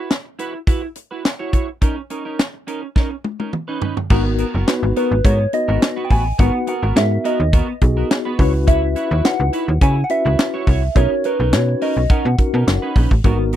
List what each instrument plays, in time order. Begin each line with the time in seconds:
Already playing: clean electric guitar E4 F#4 B4
0.10 snare, clap, closed hi-hat
0.25 muted clean electric guitar stroke
0.39 clean electric guitar E4 F#4 B4, closed hi-hat
0.54 muted clean electric guitar stroke
0.67 clean electric guitar E4 F#4 B4, kick, closed hi-hat
0.83 muted clean electric guitar stroke
0.95 muted clean electric guitar stroke, closed hi-hat
1.11 clean electric guitar E4 F#4 B4
1.24 muted clean electric guitar stroke, snare, clap, closed hi-hat
1.39 clean electric guitar E4 F#4 C#5
1.53 clean electric guitar E4 F#4 C#5, kick, closed hi-hat
1.68 muted clean electric guitar stroke
1.81 clean electric guitar C#4 D#4 A#4, kick, closed hi-hat
1.97 muted clean electric guitar stroke
2.10 clean electric guitar C#4 D#4 A#4, closed hi-hat
2.25 clean electric guitar C#4 D#4 A#4
2.39 snare, clap, closed hi-hat
2.54 muted clean electric guitar stroke
2.67 clean electric guitar C#4 D#4 A#4, closed hi-hat
2.82 muted clean electric guitar stroke
2.96 clean electric guitar C#4 D#4 A#4, kick, snare
3.11 muted clean electric guitar stroke
3.24 muted clean electric guitar stroke, high tom
3.40 clean electric guitar C#4 D#4 A#4, high tom
3.53 muted clean electric guitar stroke, mid tom
3.68 clean electric guitar C#4 D#4 B4
3.81 clean electric guitar C#4 D#4 B4, floor tom
3.97 muted clean electric guitar stroke, floor tom
4.10 fm bass G#1, clean electric guitar B3 F#4 A#4, tine electric piano B3 D#4 F#4 A#4, kick, crash
4.25 muted clean electric guitar stroke
4.38 clean electric guitar B3 F#4 A#4, closed hi-hat
4.54 fm bass F#1, clean electric guitar B3 F#4 A#4
4.67 tine electric piano B3 D#4 F#4 B4, snare, clap, closed hi-hat
4.83 fm bass G#1, muted clean electric guitar stroke
4.96 clean electric guitar B3 F#4 A#4, synth bell B4, closed hi-hat
5.11 fm bass G#1, muted clean electric guitar stroke
5.25 fm bass G#2, clean electric guitar B3 F#4 A#4, synth bell C#5, kick, closed hi-hat
5.40 muted clean electric guitar stroke
5.53 tine electric piano B3 D#4 F#4 B4, synth bell D#5, muted clean electric guitar stroke, closed hi-hat
5.68 fm bass G#1, clean electric guitar B3 F#4 A#4
5.82 muted clean electric guitar stroke, snare, clap, closed hi-hat
5.96 clean electric guitar B3 F#4 B4
6.05 synth bell G5
6.10 fm bass A1, clean electric guitar B3 F#4 B4, synth bell G#5, kick, open hi-hat
6.25 muted clean electric guitar stroke
6.38 fm bass G#1, clean electric guitar B3 F#4 A#4, tine electric piano B3 D#4 F#4 B4, synth bell F#5, kick, closed hi-hat
6.54 muted clean electric guitar stroke
6.67 clean electric guitar B3 F#4 A#4, synth bell F#5, closed hi-hat
6.82 fm bass G#1, clean electric guitar B3 F#4 A#4
6.96 fm bass G#2, tine electric piano B3 D#4 F#4 A#4, synth bell E5, snare, clap, closed hi-hat
7.11 muted clean electric guitar stroke
7.24 clean electric guitar B3 F#4 A#4, synth bell D#5, closed hi-hat
7.40 fm bass D#2, muted clean electric guitar stroke
7.53 clean electric guitar B3 F#4 A#4, kick, closed hi-hat
7.68 muted clean electric guitar stroke
7.81 fm bass B1, tine electric piano B3 D#4 F#4 G#4, muted clean electric guitar stroke, kick, closed hi-hat
7.97 clean electric guitar B3 F#4 A#4
8.10 muted clean electric guitar stroke, snare, clap, closed hi-hat
8.25 clean electric guitar B3 F#4 B4
8.38 fm bass C#2, tine electric piano C#4 E4 F#4 B4, clean electric guitar E4 F#4 C#5, kick, open hi-hat
8.54 muted clean electric guitar stroke
8.67 clean electric guitar E4 F#4 B4, synth bell E5, kick, closed hi-hat
8.83 muted clean electric guitar stroke
8.96 clean electric guitar E4 F#4 B4, closed hi-hat
9.11 fm bass D#2, clean electric guitar E4 F#4 B4
9.24 tine electric piano D#4 E4 F#4 B4, synth bell F#5, snare, clap, closed hi-hat
9.40 fm bass C#2, muted clean electric guitar stroke
9.53 clean electric guitar E4 F#4 B4, closed hi-hat
9.68 fm bass D#2, muted clean electric guitar stroke
9.81 fm bass C#3, clean electric guitar E4 F#4 B4, synth bell G#5, kick, closed hi-hat
9.97 muted clean electric guitar stroke
10.04 synth bell F#5
10.10 tine electric piano C#4 E4 F#4 B4, synth bell E5, muted clean electric guitar stroke, closed hi-hat
10.25 fm bass C#2, clean electric guitar E4 F#4 B4
10.39 snare, clap, closed hi-hat
10.54 clean electric guitar E4 F#4 C#5
10.67 fm bass C2, clean electric guitar E4 F#4 C#5, kick, open hi-hat
10.83 muted clean electric guitar stroke
10.95 fm bass B1, tine electric piano C#4 D#4 F#4 A#4, clean electric guitar C#4 D#4 A#4, synth bell C#5, kick, closed hi-hat
11.11 muted clean electric guitar stroke
11.24 clean electric guitar C#4 D#4 A#4, synth bell B4, closed hi-hat
11.40 fm bass B1, clean electric guitar C#4 D#4 A#4
11.52 fm bass B2, tine electric piano C#4 D#4 F#4 B4, synth bell C#5, snare, clap, closed hi-hat
11.69 muted clean electric guitar stroke
11.81 clean electric guitar C#4 D#4 A#4, synth bell D#5, open hi-hat
11.97 fm bass B1, muted clean electric guitar stroke
12.10 clean electric guitar C#4 D#4 A#4, synth bell F#5, kick, closed hi-hat
12.25 fm bass B2, muted clean electric guitar stroke
12.38 tine electric piano C#4 D#4 F#4 A#4, muted clean electric guitar stroke, kick, closed hi-hat
12.54 fm bass B2, clean electric guitar C#4 D#4 A#4
12.67 fm bass F#1, muted clean electric guitar stroke, snare, clap, closed hi-hat
12.82 clean electric guitar C#4 D#4 B4
12.96 fm bass A#1, clean electric guitar C#4 D#4 B4, kick, open hi-hat
13.11 fm bass A1, muted clean electric guitar stroke, kick
13.24 fm bass G#1, tine electric piano B3 D#4 F#4 A#4, clean electric guitar B3 F#4 A#4, kick, closed hi-hat, muted conga, low conga
13.39 muted clean electric guitar stroke
13.53 clean electric guitar B3, closed hi-hat